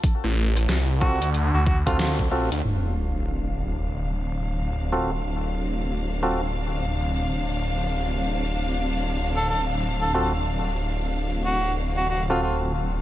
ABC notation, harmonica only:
X:1
M:4/4
L:1/16
Q:"Swing 16ths" 1/4=92
K:Cmix
V:1 name="Harmonica"
z6 ^F2 z F F ^E E z3 | z16 | z16 | z8 z A A z2 A A z |
z6 ^F2 z F F ^E E z3 |]